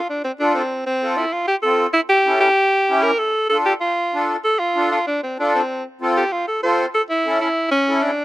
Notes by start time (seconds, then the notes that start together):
0.09 D4
0.24 C4
0.40 D4 F4 A4
0.54 C4
0.86 C4
1.02 C4 F4 A4
1.17 E4
1.32 F4
1.47 G4
1.62 C4 F4 A4
1.93 E4
2.09 G4
2.26 C#4 E4 A4
2.40 G4
2.89 C#4 E4 G4
3.03 A#4
3.18 A4
3.49 D4 F4 A4
3.65 G4
3.81 F4
4.14 D4 F4 A4
4.44 A4
4.59 F4
4.76 D4 F4 A4
4.91 F4
5.07 D4
5.23 C4
5.39 D4 F4 A4
5.55 C4
6.01 C4 F4 A4
6.17 G4
6.32 F4
6.47 A4
6.63 C4 F4 A4 C5
6.94 A4
7.10 E4
7.26 C#4 E4 A4
7.41 E4
7.71 C#4
7.88 C#4 E4 A4
8.03 D4